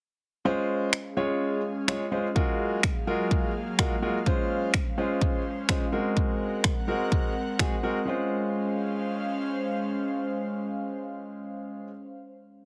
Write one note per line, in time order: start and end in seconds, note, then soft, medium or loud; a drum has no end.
0.45 2.34 G#3 medium
0.45 0.89 G#3 medium
0.45 2.34 C#4 medium
0.45 0.89 C#4 medium
0.45 0.89 F4 medium
0.45 2.34 G#4 medium
0.45 0.89 C5 loud
0.45 5.89 F5 medium
0.93 finger snap loud
1.17 1.60 G#3 medium
1.17 1.60 C#4 medium
1.17 1.60 F4 medium
1.17 1.60 C#5 loud
1.88 2.02 G#3 medium
1.88 2.02 C#4 medium
1.88 2.03 F4 medium
1.88 2.03 C#5 loud
1.88 finger snap loud
2.11 2.26 G#3 medium
2.11 2.26 C#4 medium
2.11 2.26 F4 medium
2.11 2.27 C5 loud
2.35 4.24 F#3 medium
2.35 2.79 G#3 medium
2.35 4.24 A#3 medium
2.35 2.79 F4 medium
2.35 2.79 F#4 medium
2.35 4.24 G#4 medium
2.35 2.79 A#4 loud
2.35 kick loud
2.83 finger snap loud
2.83 kick loud
3.07 3.51 G#3 medium
3.07 3.51 F4 medium
3.07 3.51 F#4 medium
3.07 3.51 A#4 loud
3.31 kick loud
3.78 3.93 G#3 medium
3.78 3.93 F4 medium
3.78 3.93 F#4 medium
3.78 3.93 A#4 loud
3.78 finger snap loud
3.78 kick loud
4.02 4.17 G#3 medium
4.02 4.17 F4 medium
4.02 4.17 F#4 medium
4.02 4.17 A#4 loud
4.26 4.70 G#3 medium
4.26 8.04 G#3 medium
4.26 4.70 C#4 medium
4.26 5.91 C#4 medium
4.26 4.70 F4 medium
4.26 4.70 C5 loud
4.26 5.92 C5 medium
4.26 kick loud
4.74 finger snap loud
4.74 kick loud
4.98 5.41 G#3 medium
4.98 5.41 C#4 medium
4.98 5.41 F4 medium
4.98 5.41 C5 medium
5.21 kick loud
5.69 5.84 G#3 medium
5.69 5.84 C#4 medium
5.69 5.84 F4 medium
5.69 5.84 C5 loud
5.69 finger snap loud
5.69 kick loud
5.92 6.69 G#3 medium
5.92 6.69 C4 medium
5.92 8.05 C4 medium
5.92 6.69 F#4 medium
5.92 8.05 A#4 medium
5.92 6.69 A#4 medium
5.92 8.05 F#5 medium
6.17 kick loud
6.64 finger snap loud
6.64 kick loud
6.88 7.31 G#3 medium
6.88 7.31 C4 medium
6.88 7.32 F#4 medium
6.88 7.32 A#4 loud
7.12 kick loud
7.59 7.74 G#3 medium
7.59 7.74 C4 medium
7.59 7.74 F#4 medium
7.59 7.74 G#4 loud
7.59 finger snap loud
7.59 kick loud
7.83 7.98 G#3 medium
7.83 7.98 C4 medium
7.83 7.98 F#4 medium
7.83 7.98 A#4 loud
8.05 11.87 G#3 medium
8.05 11.89 G#3 medium
8.05 11.88 C#4 medium
8.05 11.89 C#4 medium
8.05 11.89 F4 medium
8.05 11.89 C5 medium
8.05 11.91 C5 medium
8.05 11.89 F5 medium